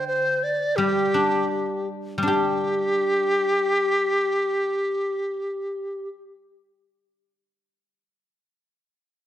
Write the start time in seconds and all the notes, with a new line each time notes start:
Already playing: D3
0.07 C5
0.43 D5
0.76 G3 G4
1.14 D4
2.18 G3
2.23 D4 G4
2.28 G4